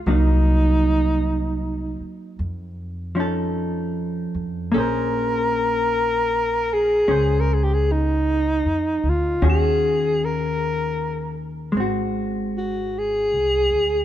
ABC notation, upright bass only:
X:1
M:4/4
L:1/8
Q:"Swing" 1/4=51
K:Bbdor
V:1 name="Upright bass" clef=bass
C,,3 z F,,3 F,, | B,,,4 D,,2- (3D,, F,, =D,, | E,,4 A,,,2- (3A,,, C,, =D,, |]